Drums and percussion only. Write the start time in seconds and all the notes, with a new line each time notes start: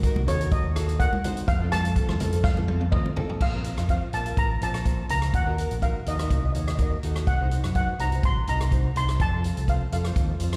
0.03 kick, closed hi-hat
0.16 high conga
0.28 closed hi-hat, low conga
0.41 closed hi-hat
0.52 kick, closed hi-hat, high conga
0.76 cross-stick, closed hi-hat
0.89 closed hi-hat
1.00 kick, closed hi-hat
1.13 high conga
1.24 closed hi-hat, low conga
1.37 closed hi-hat
1.48 kick, closed hi-hat
1.72 cross-stick, closed hi-hat, high conga
1.85 closed hi-hat
1.96 kick, closed hi-hat
2.09 cross-stick, high conga
2.20 closed hi-hat, low conga
2.32 closed hi-hat
2.44 kick, snare, high conga
2.57 low conga
2.68 high tom
2.81 high tom
2.92 kick, mid tom
3.06 high conga
3.16 floor tom, low conga
3.29 floor tom
3.41 kick, crash
3.64 closed hi-hat
3.78 cross-stick, closed hi-hat
3.89 kick, closed hi-hat
4.13 closed hi-hat
4.26 closed hi-hat
4.37 kick, closed hi-hat
4.62 closed hi-hat
4.74 cross-stick, closed hi-hat
4.85 kick, closed hi-hat
5.09 closed hi-hat
5.22 cross-stick, closed hi-hat
5.34 kick, closed hi-hat
5.58 closed hi-hat
5.71 closed hi-hat
5.82 kick, closed hi-hat
6.06 closed hi-hat
6.19 cross-stick, closed hi-hat
6.30 kick, closed hi-hat
6.55 closed hi-hat
6.68 cross-stick, closed hi-hat
6.79 kick, closed hi-hat
7.03 closed hi-hat
7.16 cross-stick, closed hi-hat
7.27 kick, closed hi-hat
7.51 closed hi-hat
7.64 cross-stick, closed hi-hat
7.75 kick, closed hi-hat
7.99 closed hi-hat
8.12 closed hi-hat
8.23 kick, closed hi-hat
8.47 closed hi-hat
8.61 cross-stick, closed hi-hat
8.72 kick, closed hi-hat
8.96 closed hi-hat
9.09 cross-stick, closed hi-hat
9.20 kick, closed hi-hat
9.44 closed hi-hat
9.57 closed hi-hat
9.68 kick, closed hi-hat
9.92 closed hi-hat
10.05 cross-stick, closed hi-hat
10.16 kick, closed hi-hat
10.40 closed hi-hat
10.53 cross-stick, closed hi-hat